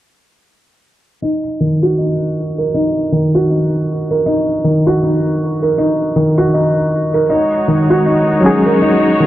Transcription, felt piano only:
1.22 1.43 D#4 medium
1.60 1.73 D#3 medium
1.83 1.92 F#4 medium
1.98 2.19 D#4 medium
2.58 2.73 A#4 medium
2.74 2.95 D#4 medium
3.12 3.25 D#3 medium
3.35 3.44 F#4 medium
3.50 3.71 D#4 medium
4.11 4.26 A#4 medium
4.26 4.47 D#4 medium
4.64 4.77 D#3 medium
4.87 4.96 F#4 medium
5.03 5.24 D#4 medium
5.62 5.77 A#4 medium
5.78 5.99 D#4 medium
6.16 6.29 D#3 medium
6.38 6.47 F#4 medium
6.54 6.75 D#4 medium
7.14 7.29 A#4 medium
7.30 7.51 D#4 medium
7.68 7.81 D#3 medium
7.90 7.99 F#4 medium
8.06 8.27 D#4 medium
8.66 8.81 A#4 medium
8.82 9.03 D#4 medium
9.20 9.27 D#3 medium

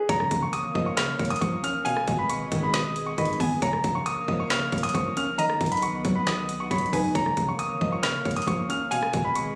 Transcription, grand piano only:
0.09 0.40 A#5 loud
0.42 0.52 C#6 medium
0.53 0.84 D#6 medium
0.86 0.96 C#6 medium
0.97 1.28 F6 medium
1.30 1.40 D#6 medium
1.41 1.60 C#6 medium
1.64 1.83 F6 medium
1.85 2.16 G#5 loud
2.19 2.28 B5 medium
2.30 2.61 C#6 medium
2.63 2.73 B5 medium
2.74 3.05 D#6 medium
3.06 3.16 C#6 medium
3.18 3.37 B5 medium
3.41 3.59 G#5 medium
3.63 3.93 A#5 medium
3.95 4.05 C#6 medium
4.06 4.37 D#6 medium
4.40 4.49 C#6 medium
4.51 4.82 F6 medium
4.83 4.93 D#6 medium
4.95 5.14 C#6 medium
5.17 5.36 F6 medium
5.38 5.69 A#5 loud
5.72 5.81 B5 medium
5.83 6.14 C#6 medium
6.15 6.25 B5 medium
6.27 6.58 D#6 medium
6.60 6.70 C#6 medium
6.71 6.90 B5 medium
6.93 7.12 G#5 medium
7.15 7.46 A#5 loud
7.48 7.58 C#6 medium
7.59 7.90 D#6 medium
7.92 8.02 C#6 medium
8.03 8.34 F6 medium
8.36 8.46 D#6 medium
8.47 8.66 C#6 medium
8.70 8.89 F6 medium
8.91 9.22 G#5 loud
9.25 9.34 B5 medium
9.36 9.55 C#6 medium

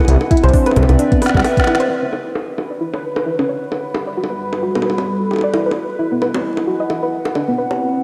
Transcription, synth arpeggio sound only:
0.31 0.42 E4 medium
0.44 0.50 C5 medium
0.54 0.65 D4 medium
0.66 0.70 B4 medium
0.99 1.04 D4 medium
1.12 1.15 B3 medium
1.22 1.29 B4 medium
1.67 1.79 E4 medium
1.80 1.86 C5 medium
1.90 1.94 E4 medium
2.03 2.06 C#4 medium
2.13 2.20 C#5 medium
2.58 2.69 F#4 medium
2.71 2.77 D5 medium
2.81 2.92 E4 medium
2.93 2.97 C#5 medium
3.26 3.31 E4 medium
3.39 3.43 C#4 medium
3.49 3.57 C#5 medium
3.94 4.06 G4 medium
4.07 4.13 D5 medium
4.17 4.29 F#4 medium
4.30 4.33 B4 medium
4.63 4.67 F#4 medium
4.75 4.79 B3 medium
4.85 4.93 B4 medium
5.31 5.42 G4 medium
5.44 5.50 D5 medium
5.54 5.65 E4 medium
5.66 5.70 B4 medium
5.99 6.04 E4 medium
6.12 6.15 B3 medium
6.22 6.29 B4 medium
6.67 6.79 F#4 medium
6.80 6.86 D#5 medium
6.90 7.01 E4 medium
7.03 7.06 B4 medium
7.35 7.40 D4 medium
7.48 7.52 B3 medium
7.58 7.66 B4 medium

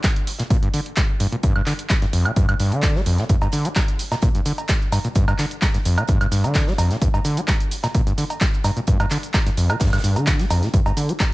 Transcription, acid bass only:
0.04 0.08 G3 medium
0.39 0.43 A#2 medium
0.50 0.57 A#2 loud
0.63 0.69 G2 medium
0.74 0.80 D3 medium
0.97 1.01 G3 medium
1.20 1.27 G2 loud
1.32 1.36 A#2 medium
1.43 1.54 G2 loud
1.56 1.62 G2 loud
1.67 1.73 D3 medium
1.90 1.94 G3 medium
2.02 2.06 G2 medium
2.13 2.27 F2 loud
2.25 2.32 A#2 medium
2.36 2.47 G2 loud
2.49 2.55 G2 loud
2.60 2.74 G2 loud
2.72 2.97 D3 loud
2.95 3.01 G3 loud
3.06 3.20 F2 loud
3.18 3.25 A#2 medium
3.29 3.36 G2 loud
3.42 3.48 G2 medium
3.53 3.67 D3 medium
3.65 3.69 G3 medium
3.76 3.80 G3 medium
4.12 4.15 A#2 medium
4.23 4.29 A#2 loud
4.35 4.41 G2 medium
4.46 4.53 D3 medium
4.69 4.73 G3 medium
4.92 4.99 G2 loud
5.05 5.08 A#2 medium
5.16 5.26 G2 loud
5.28 5.34 G2 loud
5.39 5.46 D3 medium
5.62 5.66 G3 medium
5.74 5.78 G2 medium
5.85 5.99 F2 loud
5.98 6.04 A#2 medium
6.08 6.19 G2 loud
6.21 6.27 G2 loud
6.32 6.46 G2 loud
6.44 6.69 D3 loud
6.67 6.73 G3 loud
6.78 6.92 F2 loud
6.91 6.97 A#2 medium
7.01 7.08 G2 loud
7.14 7.20 G2 medium
7.25 7.39 D3 medium
7.37 7.41 G3 medium
7.48 7.52 G3 medium
7.84 7.87 A#2 medium
7.95 8.01 A#2 loud
8.07 8.13 G2 medium
8.18 8.25 D3 medium
8.41 8.45 G3 medium
8.64 8.71 G2 loud
8.77 8.80 A#2 medium
8.88 8.98 G2 loud
9.00 9.06 G2 loud
9.11 9.18 D3 medium
9.34 9.38 G3 medium
9.46 9.50 G2 medium
9.57 9.71 F2 loud
9.70 9.76 A#2 medium
9.81 9.91 G2 loud
9.93 9.99 G2 loud
10.04 10.18 G2 loud
10.16 10.41 D3 loud
10.39 10.45 G3 loud
10.50 10.64 F2 loud
10.63 10.69 A#2 medium
10.74 10.80 G2 loud
10.86 10.92 G2 medium
10.97 11.11 D3 medium
11.09 11.13 G3 medium
11.20 11.24 G3 medium

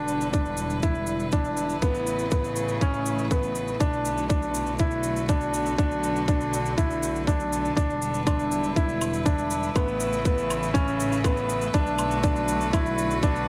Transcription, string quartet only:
0.00 1.83 D3 medium
0.00 1.83 G3 medium
0.00 0.64 F#4 medium
0.00 7.77 B4 medium
0.10 5.40 E4 medium
1.82 3.81 C#3 medium
2.04 7.78 A3 medium
3.81 9.76 D3 medium
4.17 8.57 F#4 medium
7.86 9.76 G3 medium
8.15 13.48 B4 medium
8.33 13.32 E4 medium
9.74 11.74 C#3 medium
9.85 13.48 A3 medium
11.74 13.48 D3 medium
12.08 13.48 F#4 medium

